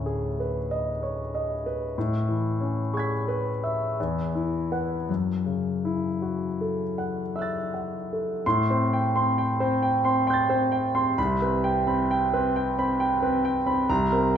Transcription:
Already playing: D2 A2 C#4
0.06 G#4
0.40 B4
0.71 D#5
1.03 C#5
1.35 D#5
1.66 B4
1.98 A2
2.29 E3
2.61 C#4
2.93 G#4 C#6 G#6
2.99 B6
3.28 B4
3.64 E5
4.00 E2
4.35 E4
4.72 B4 F#5
5.09 F#2
5.46 C#3
5.85 E4
6.22 F#4
6.61 A4
6.98 F#5
7.35 E5 E6 F#6
7.42 A6
7.74 F#5
8.13 A4
8.46 A2 C6
8.70 C4 C5
8.93 G5
9.16 C4 C6
9.38 G5
9.60 C4 C5
9.82 G5
10.05 C4 C6
10.27 G5 C6 G6
10.33 A6
10.49 C4 C5
10.72 G5
10.95 C4 C6
11.18 C2 B5
11.42 C4 B4
11.64 G5
11.87 C4 B5
12.11 G5
12.33 C4 B4
12.56 G5
12.78 C4 B5
13.00 G5
13.22 C4 B4
13.45 G5
13.66 C4 B5
13.89 C2 A#5
14.12 C4 A#4

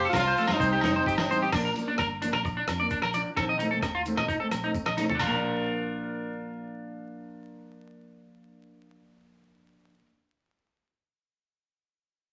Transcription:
Already playing: C5 F5 A5
0.04 C4 A4
0.09 F4
0.13 C2 F4, kick, snare, low agogo, maracas
0.19 F4
0.28 C5
0.37 F3 A3 C4 A4, maracas
0.47 G2 F4, snare, low agogo, maracas
0.53 D#4
0.59 C2 G3 C4 C5 D#5 G5, muted clean electric guitar stroke, kick, maracas
0.73 G4, maracas
0.81 F1 G3 C4 D#4, snare, low agogo, maracas
0.86 D#4
0.94 C4 D#4 C5
1.06 G1 G4, kick, maracas
1.18 snare, low agogo, maracas
1.29 A1 G3 C4 D#4 C5, maracas
1.42 G4, maracas
1.52 A#1 F3 A#3 D4, kick, cross-stick, crash, low agogo, maracas
1.65 A#4
1.76 F3 A#3 D4, closed hi-hat, maracas
1.88 A#3 D4
1.98 G1 A#4, kick, cross-stick, low agogo, maracas
2.22 F3 A#3 D4, closed hi-hat, maracas
2.32 A#1 A#4, cross-stick, low agogo
2.45 muted clean electric guitar stroke, kick, maracas
2.57 D4
2.67 F2, cross-stick, closed hi-hat, low agogo, maracas
2.80 A#3 D4 D5, maracas
2.90 D4, kick, maracas
3.02 A#1 A#4, cross-stick, low agogo
3.13 F3 D4 D5, closed hi-hat, maracas
3.36 A#1 D#3 C4 A4, muted clean electric guitar stroke, kick, cross-stick, low agogo, maracas
3.49 D#5
3.59 D#3 A3 C4 D#4, closed hi-hat, maracas
3.71 A3 C4 A4
3.82 D#2, muted clean electric guitar stroke, kick, cross-stick, low agogo, maracas
3.95 F4
4.05 D#3 A3 C4, closed hi-hat, maracas
4.17 A#2 D#5, cross-stick, low agogo
4.28 D#4, kick, maracas
4.40 A3 C4 A4
4.51 A#1, cross-stick, closed hi-hat, low agogo, maracas
4.64 A3 C4 D#4
4.75 kick, maracas
4.86 A#1 D#5, cross-stick, low agogo
4.97 D#3 A3 D#4, snare, closed hi-hat, maracas
5.01 C4
5.10 A4, floor tom
5.15 F3 D4
5.19 A#1 F4, kick, open hi-hat, low agogo, maracas
5.27 A#3 A#4
5.36 D4

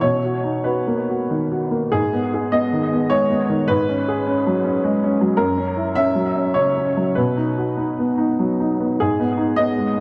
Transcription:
0.01 B2 C#5
0.25 F#4
0.44 D#4
0.64 F#4 B4
0.87 A#3
1.10 F#4
1.30 D#3
1.51 F#4
1.71 A#3
1.92 G#2 G#4
2.13 B3
2.34 G#4
2.52 B3 D#5
2.73 D#3
2.93 B3
3.10 G#3 C#5
3.30 B3
3.49 D#3
3.68 G#2 B4
3.89 C#4
4.08 G#4
4.27 C#4
4.47 F#3
4.65 C#4
4.84 G#3
5.04 C#4
5.21 F#3
5.37 F#2 A#4
5.58 C#4
5.76 E4
5.95 C#4 E5
6.15 F#3
6.35 C#4
6.54 C#3 C#5
6.78 C#4
6.97 F#3
7.15 B2 B4
7.37 D#4
7.58 F#4
7.77 D#4
7.99 B3
8.18 D#4
8.39 F#3
8.60 D#4
8.80 B3
9.00 G#2 G#4
9.20 B3
9.37 D#4
9.56 B3 D#5
9.78 G#3

